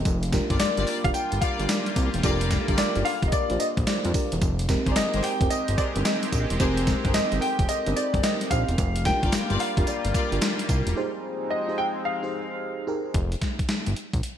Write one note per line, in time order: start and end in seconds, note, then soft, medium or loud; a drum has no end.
0.05 0.40 F1 loud
0.05 4.38 G3 medium
0.05 4.38 A#3 medium
0.05 4.38 F4 loud
0.05 kick loud
0.05 closed hi-hat medium
0.05 tambourine medium
0.23 closed hi-hat medium
0.32 0.92 D4 medium
0.32 0.92 F4 medium
0.32 0.92 G4 medium
0.32 0.92 A#4 loud
0.32 kick medium
0.32 snare medium
0.32 closed hi-hat medium
0.32 tambourine medium
0.50 0.58 G1 loud
0.50 0.64 F4 medium
0.50 0.65 G4 medium
0.50 0.65 A#4 medium
0.50 0.65 D5 medium
0.50 kick loud
0.50 closed hi-hat medium
0.59 0.67 G1 soft
0.59 1.06 D5 medium
0.59 snare loud
0.59 clap loud
0.59 closed hi-hat medium
0.59 tambourine loud
0.77 0.85 G1 medium
0.77 0.92 F4 medium
0.77 0.92 G4 medium
0.77 0.92 A#4 medium
0.77 0.92 D5 medium
0.77 closed hi-hat medium
0.87 clap medium
0.87 open hi-hat medium
1.04 1.12 F1 medium
1.04 1.49 D4 medium
1.04 1.49 F4 medium
1.04 1.49 G4 medium
1.04 1.49 A#4 medium
1.04 1.09 F5 loud
1.04 kick loud
1.04 closed hi-hat medium
1.14 1.39 G5 loud
1.14 closed hi-hat medium
1.14 tambourine medium
1.32 1.40 G1 loud
1.32 closed hi-hat medium
1.41 1.62 F4 medium
1.41 1.62 G4 medium
1.41 1.62 A#4 medium
1.41 1.62 D5 medium
1.41 1.67 F5 medium
1.41 kick loud
1.41 closed hi-hat medium
1.41 tambourine medium
1.59 1.67 G1 medium
1.59 2.16 D4 medium
1.59 2.17 F4 medium
1.59 2.17 G4 medium
1.59 2.17 A#4 medium
1.59 closed hi-hat medium
1.69 2.10 D5 medium
1.69 snare loud
1.69 clap medium
1.69 closed hi-hat medium
1.69 tambourine loud
1.86 closed hi-hat medium
1.96 2.10 C2 loud
1.96 kick medium
1.96 closed hi-hat medium
1.96 tambourine medium
2.14 2.22 E1 medium
2.14 closed hi-hat medium
2.23 2.59 F1 loud
2.23 2.83 D4 loud
2.23 2.43 F4 loud
2.23 2.83 F4 medium
2.23 2.44 G4 medium
2.23 2.83 G4 medium
2.23 2.32 A4 medium
2.23 2.44 A#4 medium
2.23 2.44 D5 loud
2.23 kick loud
2.23 closed hi-hat medium
2.23 tambourine medium
2.31 2.87 A#4 loud
2.41 closed hi-hat medium
2.51 kick medium
2.51 snare medium
2.51 closed hi-hat medium
2.51 tambourine medium
2.68 2.76 G1 medium
2.68 2.83 F4 medium
2.68 2.83 G4 medium
2.68 2.83 A#4 medium
2.68 2.83 D5 medium
2.68 kick medium
2.68 closed hi-hat medium
2.78 2.85 G1 soft
2.78 3.06 D5 medium
2.78 snare loud
2.78 clap loud
2.78 closed hi-hat medium
2.78 tambourine medium
2.95 3.03 G1 medium
2.95 3.40 D4 medium
2.95 3.40 F4 medium
2.95 3.40 G4 medium
2.95 3.40 A#4 medium
2.95 closed hi-hat medium
3.05 3.26 F5 loud
3.05 open hi-hat medium
3.22 3.30 F1 medium
3.22 kick loud
3.22 closed hi-hat medium
3.28 3.33 D#5 medium
3.32 3.61 D5 medium
3.32 kick loud
3.32 closed hi-hat medium
3.32 tambourine medium
3.50 3.58 A#1 medium
3.50 4.07 D4 medium
3.50 4.07 F4 medium
3.50 4.08 G4 medium
3.50 4.08 C5 medium
3.50 closed hi-hat soft
3.59 3.66 D#5 medium
3.59 closed hi-hat medium
3.59 tambourine medium
3.77 3.85 A#1 medium
3.77 kick loud
3.77 closed hi-hat soft
3.87 4.29 D5 medium
3.87 snare loud
3.87 clap medium
3.87 closed hi-hat medium
3.87 tambourine loud
4.05 4.13 F2 loud
4.05 closed hi-hat medium
4.14 4.41 D4 medium
4.14 4.42 F4 medium
4.14 4.42 G4 medium
4.14 4.42 A#4 medium
4.14 kick loud
4.14 open hi-hat medium
4.14 tambourine medium
4.32 4.40 E1 medium
4.32 closed hi-hat medium
4.42 4.77 F1 loud
4.42 8.74 G#3 medium
4.42 8.74 C4 medium
4.42 8.74 G4 loud
4.42 kick loud
4.42 closed hi-hat medium
4.42 tambourine medium
4.59 closed hi-hat medium
4.69 5.28 C4 medium
4.69 5.28 D#4 medium
4.69 5.29 G4 medium
4.69 5.29 A#4 loud
4.69 kick medium
4.69 snare medium
4.69 closed hi-hat medium
4.69 tambourine medium
4.86 4.94 G1 medium
4.86 5.01 G4 medium
4.86 5.01 G#4 medium
4.86 5.01 A#4 medium
4.86 5.01 C5 medium
4.86 kick medium
4.86 closed hi-hat soft
4.91 4.96 D5 medium
4.96 5.04 G1 soft
4.96 5.22 D#5 loud
4.96 snare loud
4.96 clap loud
4.96 closed hi-hat medium
4.96 tambourine medium
5.13 5.22 G1 medium
5.13 5.28 G4 medium
5.13 5.28 G#4 medium
5.13 5.28 A#4 medium
5.13 5.28 C5 medium
5.13 closed hi-hat soft
5.23 5.51 G5 loud
5.23 clap medium
5.23 open hi-hat medium
5.40 5.49 F1 medium
5.40 5.85 C4 medium
5.40 5.85 D#4 medium
5.40 5.86 G4 medium
5.40 5.86 A#4 medium
5.40 kick loud
5.40 closed hi-hat medium
5.50 5.79 D#5 loud
5.50 closed hi-hat medium
5.50 tambourine medium
5.68 5.76 G1 medium
5.68 closed hi-hat medium
5.78 5.98 G4 medium
5.78 5.98 G#4 medium
5.78 5.98 A#4 medium
5.78 5.98 C5 medium
5.78 5.84 D5 medium
5.78 kick loud
5.78 closed hi-hat medium
5.78 tambourine medium
5.95 6.03 G1 loud
5.95 6.53 C4 medium
5.95 6.53 D#4 medium
5.95 6.53 G4 medium
5.95 6.53 A#4 medium
5.95 closed hi-hat medium
6.05 6.47 D#5 medium
6.05 snare loud
6.05 clap medium
6.05 closed hi-hat medium
6.05 tambourine medium
6.23 closed hi-hat medium
6.33 6.46 A#1 loud
6.33 kick medium
6.33 closed hi-hat medium
6.33 tambourine medium
6.50 6.58 E1 medium
6.50 closed hi-hat medium
6.60 6.95 F1 loud
6.60 7.19 C4 loud
6.60 7.19 D#4 medium
6.60 6.80 G4 medium
6.60 7.20 G4 medium
6.60 6.80 G#4 medium
6.60 6.80 A#4 medium
6.60 7.20 A#4 loud
6.60 6.80 C5 loud
6.60 kick loud
6.60 closed hi-hat medium
6.60 tambourine medium
6.77 closed hi-hat medium
6.87 kick medium
6.87 snare medium
6.87 closed hi-hat medium
6.87 tambourine medium
7.05 7.12 G1 medium
7.05 7.19 G4 medium
7.05 7.19 G#4 medium
7.05 7.19 A#4 medium
7.05 7.19 C5 medium
7.05 kick loud
7.05 closed hi-hat medium
7.14 7.22 G1 soft
7.14 7.40 D#5 loud
7.14 snare loud
7.14 clap loud
7.14 closed hi-hat medium
7.14 tambourine medium
7.32 7.40 G1 medium
7.32 7.76 C4 medium
7.32 7.77 D#4 medium
7.32 7.77 G4 medium
7.32 7.37 A4 medium
7.32 closed hi-hat medium
7.40 7.80 A#4 medium
7.40 7.70 G5 loud
7.40 open hi-hat medium
7.59 7.67 F1 medium
7.59 kick loud
7.59 closed hi-hat medium
7.69 7.97 D#5 loud
7.69 closed hi-hat medium
7.69 tambourine medium
7.86 7.94 G1 medium
7.86 8.44 C4 medium
7.86 8.44 D#4 medium
7.86 8.44 G4 medium
7.86 8.44 A#4 loud
7.86 closed hi-hat medium
7.96 8.22 D5 medium
7.96 closed hi-hat medium
7.96 tambourine medium
8.14 8.21 G1 loud
8.14 kick medium
8.14 closed hi-hat soft
8.24 8.49 D#5 medium
8.24 snare loud
8.24 clap medium
8.24 closed hi-hat medium
8.24 tambourine loud
8.41 closed hi-hat medium
8.51 8.65 A#1 loud
8.51 8.78 C4 medium
8.51 8.78 D#4 medium
8.51 8.78 G4 medium
8.51 8.79 C5 medium
8.51 9.01 F5 loud
8.51 kick loud
8.51 closed hi-hat medium
8.51 tambourine medium
8.69 8.76 E1 medium
8.69 closed hi-hat medium
8.78 9.13 F1 loud
8.78 10.94 G3 medium
8.78 10.94 A#3 medium
8.78 10.94 F4 loud
8.78 kick loud
8.78 closed hi-hat medium
8.78 tambourine medium
8.96 closed hi-hat medium
9.05 9.65 D4 medium
9.05 9.65 F4 medium
9.05 9.65 G4 medium
9.05 9.65 A#4 medium
9.05 9.61 G5 loud
9.05 kick medium
9.05 snare medium
9.05 closed hi-hat medium
9.05 tambourine medium
9.23 9.31 G1 medium
9.23 9.37 F4 medium
9.23 9.37 G4 medium
9.23 9.37 A#4 medium
9.23 9.38 D5 medium
9.23 kick loud
9.23 closed hi-hat medium
9.32 9.40 G1 soft
9.32 snare loud
9.32 clap loud
9.32 closed hi-hat medium
9.32 tambourine loud
9.50 9.58 G1 medium
9.50 9.64 F4 medium
9.50 9.65 G4 medium
9.50 9.65 A#4 medium
9.50 9.65 D5 medium
9.50 closed hi-hat medium
9.60 9.88 F5 medium
9.60 clap medium
9.60 open hi-hat medium
9.77 9.85 F1 loud
9.77 10.22 D4 medium
9.77 10.22 F4 medium
9.77 10.22 G4 medium
9.77 10.22 A#4 medium
9.77 kick loud
9.77 closed hi-hat medium
9.87 10.65 D5 medium
9.87 closed hi-hat medium
9.87 tambourine medium
10.05 10.13 G1 medium
10.05 closed hi-hat medium
10.14 10.34 F4 medium
10.14 10.34 G4 medium
10.14 10.35 A#4 medium
10.14 10.35 D5 medium
10.14 kick loud
10.14 closed hi-hat medium
10.14 tambourine medium
10.32 10.40 G1 loud
10.32 10.89 D4 medium
10.32 10.89 F4 medium
10.32 10.89 G4 medium
10.32 10.90 A#4 medium
10.32 closed hi-hat medium
10.42 snare loud
10.42 clap medium
10.42 closed hi-hat medium
10.42 tambourine loud
10.59 closed hi-hat medium
10.69 10.83 C2 medium
10.69 kick medium
10.69 closed hi-hat medium
10.69 tambourine medium
10.87 10.94 E1 medium
10.87 closed hi-hat medium
10.96 13.12 F3 medium
10.96 13.12 G#3 loud
10.96 13.12 C4 medium
10.96 11.56 D#4 loud
10.96 13.12 D#4 medium
10.96 11.56 G4 medium
10.96 11.56 G#4 medium
10.96 11.56 C5 loud
11.50 11.76 D#5 medium
11.68 12.13 D#4 medium
11.68 12.13 G4 medium
11.68 12.13 G#4 medium
11.68 12.13 C5 medium
11.78 11.84 G5 loud
12.05 12.83 F5 medium
12.23 12.80 D#4 medium
12.23 12.80 G4 medium
12.23 12.80 G#4 medium
12.23 12.81 C5 medium
12.87 13.14 D#4 medium
12.87 13.15 G4 medium
12.87 13.15 G#4 medium
12.87 13.15 A#4 loud
13.14 13.36 F1 loud
13.14 kick loud
13.14 closed hi-hat medium
13.32 closed hi-hat medium
13.42 kick medium
13.42 snare medium
13.42 closed hi-hat medium
13.59 13.63 G1 soft
13.59 kick medium
13.59 closed hi-hat soft
13.69 snare medium
13.69 closed hi-hat medium
13.86 13.94 G1 medium
13.86 closed hi-hat soft
13.96 closed hi-hat medium
14.13 14.21 A#1 medium
14.13 kick medium
14.13 closed hi-hat medium
14.23 closed hi-hat medium